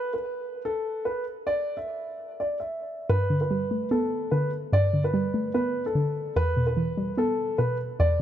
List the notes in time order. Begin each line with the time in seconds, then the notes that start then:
Already playing: B4
0.14 B4
0.65 A4
1.05 B4
1.47 D5
1.77 E5
2.40 D5
2.60 E5
3.09 G2 B4
3.30 D3
3.41 B4
3.51 G3
3.71 A3
3.91 B3 A4
4.31 D3 B4
4.73 G2 D5
4.93 D3
5.04 B4
5.14 G3
5.34 A3
5.54 B3 B4
5.86 A4
5.95 D3
6.36 E2 B4
6.57 B2
6.67 B4
6.77 E3
6.97 G3
7.17 B3 A4
7.58 B2 B4
8.00 E2 D5